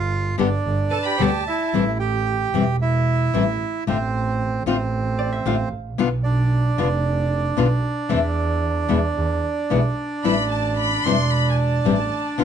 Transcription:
Already playing: G1
0.00 F4 F5
0.38 G1 D3 G3 B3 D4 G4 D5
0.65 G1
0.90 A4 B4 A5
1.04 G4 G5 B5
1.18 D2 D3 G3 B3 G4 D5 A5
1.47 E4 E5
1.73 A1 E3 G3 C4 E4
1.99 G4 G5
2.54 E1 E3 G3 C4 E4
2.82 E4 E5
3.34 A1 E3 G3 C4 E4
3.87 A1 D3 A3 C4 F4 C5
4.66 A1 D3 A3 C4 F4 C5
5.19 D5
5.33 E5
5.46 A1 D3 A3 C4 F4 F5
5.73 A1
5.98 B1 B2 D3 B3 D4 F4
6.24 D4 D5
6.78 F1 B2 D3 B3 D4 F4
7.56 B1 B2 D3 B3 D4 F4
8.09 E2 E3 A3 C4 E4
8.89 E2 B2 E3 G#3 B3 E4
9.17 E2
9.70 B1 B2 E3 G#3 B3 E4
10.24 A1 E3 G3 C4 E4 B5
10.51 A5
10.78 B5
11.05 E1 E3 G3 C4 E4 C6
11.31 B5
11.51 G#5
11.58 A5
11.85 A1 E3 G3 C4 E4
12.38 B1 B2 D3 B3 D4 F4

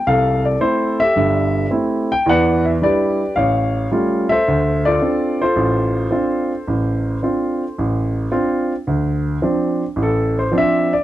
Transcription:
0.07 C2 A4 F5
0.45 D5
0.60 A3 C4 E4 C5
1.00 G4 A4 E5
1.16 G1 G2
1.71 A3 C4 E4
2.12 G5
2.26 E2 E3 D5 F#5
2.30 B4
2.65 E5
2.81 G3 D4 E4 G4 B4 D5
3.36 A1 C#5 F5
3.91 G3 A3 C#4 F4
4.29 A4 C5 E5
4.48 D2
4.85 F4 A4 D5
5.02 C4 D4 F4
5.41 F4 A4 C5
5.56 A1
6.11 C4 D4 F4
6.67 A1
7.23 C4 D4 F4
7.78 A1
8.32 C4 D4 F4
8.87 D2
9.42 F3 C4 D4
9.96 A1
10.03 A4
10.39 C5
10.52 F3 C4 D4
10.58 E5
10.93 D5

